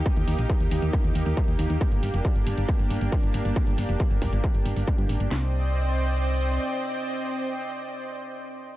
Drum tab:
HH |xxoxxxoxxxoxxxox|xxoxxxoxxxoxxxox|xxoxxxoxxxooxxox|----------------|
CP |----------------|----------------|----------------|x---------------|
SD |----------------|----------------|----------------|o---------------|
BD |o---o---o---o---|o---o---o---o---|o---o-o-o---o---|----------------|

HH |----------------|
CP |----------------|
SD |----------------|
BD |----------------|